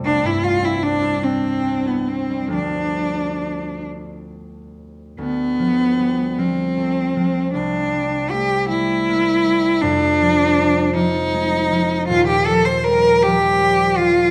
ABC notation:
X:1
M:6/8
L:1/16
Q:3/8=52
K:Ddor
V:1 name="Cello"
D E F E D2 C3 B, C2 | D6 z6 | B,6 C6 | D4 G2 E6 |
D6 _E6 | F G A c _B2 G4 F2 |]
V:2 name="Harp" clef=bass
[C,,G,CG] G,, G, C D E D C D E C G, | [D,,F,B,D]12 | D,,2 F,2 G,2 F,2 A,2 F,2 | C,,2 G,2 A,2 G,2 _B,2 G,2 |
[F,,,F,,]2 F,2 G,2 F,2 _A,2 F,2 | [_E,,,_E,,]2 F,2 G,2 F,2 G,2 F,2 |]